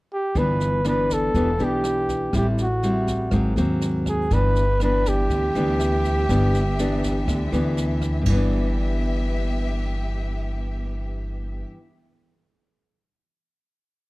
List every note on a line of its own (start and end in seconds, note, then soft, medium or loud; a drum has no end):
0.13 0.40 G4 medium
0.35 1.30 G1 medium
0.35 1.32 G2 medium
0.35 0.81 E3 soft
0.35 0.81 B3 medium
0.35 0.81 D4 medium
0.35 0.86 B4 loud
0.35 kick medium
0.35 snare soft
0.60 snare soft
0.84 1.32 E3 soft
0.84 1.32 B3 medium
0.84 1.32 D4 medium
0.84 1.15 B4 loud
0.84 cross-stick medium
0.84 snare soft
1.10 1.65 A4 loud
1.10 kick soft
1.10 snare soft
1.34 1.57 E1 medium
1.34 2.31 E3 medium
1.34 1.49 B3 medium
1.34 1.49 D4 medium
1.34 1.50 G4 medium
1.34 kick medium
1.34 snare soft
1.59 2.29 B1 medium
1.59 2.29 B3 medium
1.59 2.30 D4 medium
1.59 2.30 G4 medium
1.59 snare soft
1.64 2.35 G4 medium
1.84 cross-stick medium
1.84 snare soft
2.08 kick soft
2.08 snare soft
2.33 3.28 A1 medium
2.33 3.30 A2 medium
2.33 2.65 G3 medium
2.33 2.65 C4 medium
2.33 2.65 E4 medium
2.33 kick medium
2.33 cross-stick medium
2.33 snare soft
2.37 2.47 G4 medium
2.57 snare soft
2.62 3.55 F#4 medium
2.82 3.30 G3 medium
2.82 3.30 C4 soft
2.82 3.31 E4 medium
2.82 snare soft
3.07 kick soft
3.07 snare soft
3.31 3.55 G#1 medium
3.31 4.28 G#2 medium
3.31 3.53 F#3 medium
3.31 3.53 A#3 medium
3.31 3.53 C4 medium
3.31 kick medium
3.31 cross-stick medium
3.31 snare soft
3.56 4.26 D#2 medium
3.56 4.27 F#3 medium
3.56 4.27 A#3 medium
3.56 4.27 C4 medium
3.56 snare soft
3.81 snare soft
4.06 4.35 G#4 medium
4.06 kick soft
4.06 cross-stick medium
4.06 snare soft
4.30 5.26 G1 loud
4.30 5.27 G2 medium
4.30 4.63 E3 medium
4.30 8.23 B3 medium
4.30 4.63 B3 medium
4.30 4.63 D4 medium
4.30 8.22 G4 medium
4.30 4.82 B4 loud
4.30 8.22 E5 medium
4.30 kick medium
4.30 snare soft
4.55 snare soft
4.80 5.51 E3 medium
4.80 5.51 B3 medium
4.80 5.51 D4 medium
4.80 5.10 B4 loud
4.80 cross-stick medium
4.80 snare soft
5.05 7.79 G4 loud
5.05 kick soft
5.05 snare soft
5.30 5.53 D2 medium
5.30 6.26 D3 medium
5.30 kick medium
5.30 snare soft
5.55 6.25 D2 medium
5.55 6.25 E3 medium
5.55 6.25 B3 medium
5.55 6.25 D4 medium
5.55 snare soft
5.80 cross-stick medium
5.80 snare soft
6.04 kick soft
6.04 snare soft
6.29 7.24 G1 loud
6.29 7.25 G2 medium
6.29 6.61 E3 medium
6.29 6.61 B3 medium
6.29 6.61 D4 medium
6.29 kick medium
6.29 cross-stick medium
6.29 snare soft
6.54 snare soft
6.78 7.49 E3 medium
6.78 7.49 B3 soft
6.78 7.49 D4 medium
6.78 snare soft
7.03 kick soft
7.03 snare soft
7.28 7.51 D2 medium
7.28 8.24 D3 medium
7.28 kick medium
7.28 cross-stick medium
7.28 snare soft
7.52 8.22 D2 medium
7.52 8.22 E3 medium
7.52 8.23 B3 medium
7.52 8.23 D4 medium
7.52 snare soft
7.77 snare soft
8.01 kick soft
8.01 cross-stick medium
8.01 snare soft
8.22 11.72 G2 medium
8.26 11.62 G1 medium
8.26 11.77 E3 medium
8.26 11.62 B3 medium
8.26 11.62 G4 medium
8.26 11.62 E5 medium
8.26 kick medium
8.26 crash medium
8.32 11.82 B3 medium
8.36 11.86 D4 medium